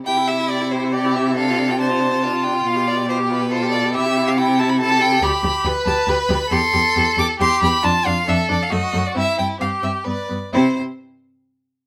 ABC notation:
X:1
M:3/4
L:1/16
Q:1/4=138
K:C
V:1 name="Violin"
g2 e2 d2 c2 d2 e2 | f3 g a6 g2 | f2 d2 c2 B2 c2 d2 | e3 f g2 a b a2 g2 |
b6 a2 b4 | c'6 d'2 c'2 b2 | a2 f2 e2 d f ^d3 =d | e2 g2 f2 e2 d4 |
c2 z8 z2 |]
V:2 name="Violin"
E8 G4 | A4 c4 F4- | F4 G4 A4 | G4 E4 A4 |
G4 B8 | A8 G4 | F4 A4 ^F4 | E4 G4 B2 z2 |
E2 z8 z2 |]
V:3 name="Viola"
G E G E G E G E G E G E | D F D F D F D F D F D F | F G F G F G F G F G F G | E G E G E G E G E G E G |
G2 G2 G2 G2 G2 G2 | G2 G2 G2 G2 G2 G2 | D2 D2 D2 D2 A,2 A,2 | C2 C2 C2 C2 B,2 B,2 |
C2 z8 z2 |]
V:4 name="Cello" clef=bass
C,12- | C,12 | B,,12 | C,12 |
D,,2 D,,2 D,,2 D,,2 D,,2 D,,2 | E,,2 E,,2 E,,2 E,,2 E,,2 E,,2 | F,,2 F,,2 F,,2 F,,2 ^F,,2 F,,2 | G,,2 G,,2 G,,2 G,,2 G,,2 G,,2 |
C,2 z8 z2 |]